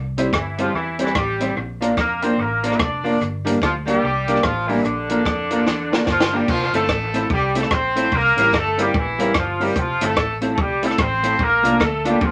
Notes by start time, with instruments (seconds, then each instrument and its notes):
Already playing: fingered electric bass C2
0.17 hollow-body jazz guitar G3 C4 E4, upright piano C4 E4 G4 C5, closed hi-hat
0.33 fingered electric bass G1, horn section E3 E4, kick, cross-stick
0.58 horn section F3 F4, hollow-body jazz guitar G3 C4 E4, upright piano C4 E4 G4 C5, closed hi-hat
0.74 fingered electric bass E2, horn section E3 E4
0.98 horn section E3 E4, hollow-body jazz guitar G3 C4 E4, upright piano C4 E4 G4 C5, closed hi-hat
1.07 cross-stick
1.15 fingered electric bass A1, horn section G3 G4, kick, cross-stick
1.40 hollow-body jazz guitar G3 C4 E4, upright piano C4 E4 G4 C5, closed hi-hat
1.57 fingered electric bass A#1
1.81 hollow-body jazz guitar F3 A#3 D4, upright piano A#3 D4 F4 A#4, closed hi-hat
1.97 fingered electric bass F2, horn section A#3 A#4, kick, cross-stick
2.22 hollow-body jazz guitar F3 A#3 D4, upright piano A#3 D4 F4 A#4, horn section C4 C5, closed hi-hat
2.38 fingered electric bass A1, horn section A#3 A#4
2.63 hollow-body jazz guitar F3 A#3 D4, upright piano A#3 D4 F4 A#4, horn section A#3 A#4, closed hi-hat
2.72 horn section E4 E5, cross-stick
2.79 fingered electric bass F1, horn section D4 D5, kick, cross-stick
3.04 hollow-body jazz guitar F3 A#3 D4, upright piano A#3 D4 F4 A#4, open hi-hat
3.21 fingered electric bass G1, hi-hat pedal
3.45 hollow-body jazz guitar G3 A#3 D4, upright piano A#3 D4 G4 A#4, closed hi-hat
3.62 fingered electric bass D2, horn section F3 F4, kick, cross-stick
3.85 hollow-body jazz guitar G3 A#3 D4, horn section G3 G4, upright piano A#3 D4 G4 A#4, closed hi-hat
4.03 fingered electric bass C2
4.27 hollow-body jazz guitar G3 A#3 D4, upright piano A#3 D4 G4 A#4, closed hi-hat
4.36 cross-stick
4.43 fingered electric bass A1, horn section F3 F4, kick, cross-stick
4.67 horn section E3 E4, hollow-body jazz guitar G3 A#3 D4, upright piano A#3 D4 G4 A#4, open hi-hat
4.83 fingered electric bass A#1, horn section D3 D4, hi-hat pedal
5.09 hollow-body jazz guitar F3 A#3 D4, upright piano A#3 D4 F4 A#4, closed hi-hat
5.26 fingered electric bass F2, kick, cross-stick
5.50 hollow-body jazz guitar F3 A#3 D4, upright piano A#3 D4 F4 A#4, closed hi-hat
5.66 fingered electric bass E2, snare
5.91 hollow-body jazz guitar F3 A#3 D4, upright piano A#3 D4 F4 A#4, snare
6.06 fingered electric bass G1, horn section F3 F4, kick, snare
6.20 snare
6.32 hollow-body jazz guitar F3 A#3 D4, horn section G3 G4, upright piano A#3 D4 F4 A#4
6.48 fingered electric bass F1, horn section F3 F4, kick, crash
6.72 fingered electric bass G1, hollow-body jazz guitar A3 C4 E4, horn section A3 A4, upright piano C4 E4 F4 A4, closed hi-hat
6.89 fingered electric bass A1, kick, cross-stick
7.14 hollow-body jazz guitar A3 C4 E4, upright piano C4 E4 F4 A4, closed hi-hat
7.30 fingered electric bass C2, horn section G3 G4, kick
7.55 hollow-body jazz guitar A3 C4 E4, horn section A3 A4, upright piano C4 E4 F4 A4, closed hi-hat
7.63 cross-stick
7.71 fingered electric bass A#1, horn section C4 C5, upright piano F4 A4, kick, cross-stick
7.95 hollow-body jazz guitar A3 C4 E4, upright piano C4 E4 F4 A4, closed hi-hat
8.12 fingered electric bass C2, horn section A#3 A#4, kick
8.36 fingered electric bass A1, hollow-body jazz guitar G3 A#3 E4, upright piano C4 E4 G4 A#4, closed hi-hat
8.53 fingered electric bass G1, horn section A3 A4, kick, cross-stick
8.77 hollow-body jazz guitar G3 A#3 E4, horn section G3 G4, upright piano C4 E4 G4 A#4, closed hi-hat
8.94 fingered electric bass A#1, horn section E3 E4, kick
9.18 hollow-body jazz guitar G3 A#3 E4, upright piano C4 E4 G4 A#4, closed hi-hat
9.34 fingered electric bass G1, horn section F3 F4, kick, cross-stick
9.60 hollow-body jazz guitar G3 A#3 E4, horn section G3 G4, upright piano C4 E4 G4 A#4, open hi-hat
9.75 fingered electric bass F1, kick, hi-hat pedal
9.80 horn section F3 F4
10.01 fingered electric bass G1, hollow-body jazz guitar A3 C4 E4, horn section A3 A4, upright piano C4 E4 F4 A4, closed hi-hat
10.16 fingered electric bass A1, kick, cross-stick
10.41 hollow-body jazz guitar A3 C4 E4, upright piano C4 E4 F4 A4, closed hi-hat
10.55 fingered electric bass C2, horn section A3 A4, kick
10.61 horn section G3 G4
10.83 hollow-body jazz guitar A3 C4 E4, horn section A3 A4, upright piano C4 E4 F4 A4, closed hi-hat
10.91 cross-stick
10.98 fingered electric bass A1, horn section C4 C5, upright piano F4 A4, kick, cross-stick
11.23 hollow-body jazz guitar A3 C4 E4, upright piano C4 E4 F4 A4, closed hi-hat
11.39 fingered electric bass A#1, horn section A#3 A#4, kick
11.63 fingered electric bass C2, hollow-body jazz guitar A3 D4 F4, upright piano A#3 D4 F4 A4, closed hi-hat
11.80 fingered electric bass D2, horn section A3 A4, kick, cross-stick
12.05 hollow-body jazz guitar A3 D4 F4, upright piano A#3 D4 F4 A4, closed hi-hat
12.09 horn section G3 G4
12.21 fingered electric bass F2, horn section F3 F4, kick